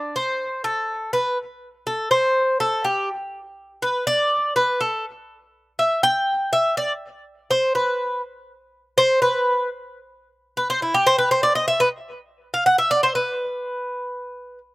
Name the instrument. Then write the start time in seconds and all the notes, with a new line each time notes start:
cuban tres
Already playing: D4
0.16 C5
0.64 A4
1.13 B4
1.87 A4
2.11 C5
2.60 A4
2.85 G4
3.82 B4
4.07 D5
4.56 B4
4.81 A4
5.79 E5
6.03 G5
6.53 E5
6.77 D5
7.51 C5
7.75 B4
8.98 C5
9.22 B4
10.57 B4
10.70 C5
10.82 E4
10.94 G4
11.07 C5
11.18 B4
11.31 C5
11.43 D5
11.55 D#5
11.68 E5
11.80 B4
12.54 F5
12.66 F#5
12.78 E5
12.91 D5
13.03 C5
13.15 B4